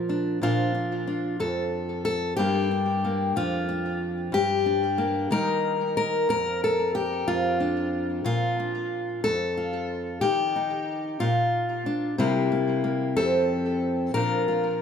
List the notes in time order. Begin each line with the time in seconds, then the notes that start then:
Already playing: A#2 F3 F4 A#4
0.09 D4
0.42 A#2 F3 D4 F4
0.75 D4
1.07 D4
1.40 F2 A4
2.05 A4
2.36 G2 G3 A#3 D4 G4
2.71 D4
3.05 A#3
3.36 F2 F3 D4 F4
3.69 D4
4.32 G2 G4
4.66 D4
4.98 A#3
5.31 D#3 G3 A#3 D#4 A#4
5.97 A#4
6.29 F2 A#4
6.64 A4
6.95 G4
7.27 F2 F4
7.60 D4
8.24 A#2 F4
8.60 D4
9.24 F2 A4
9.57 F4
10.21 D#3 G4
10.56 D#4
11.20 A#2 F4
11.86 D4
12.18 C3 G3 A#3 E4
12.52 A#3
12.84 A#3
13.16 F2 F3 C4 G4 A4
14.14 A#2 F3 D4 F4 A#4
14.48 F4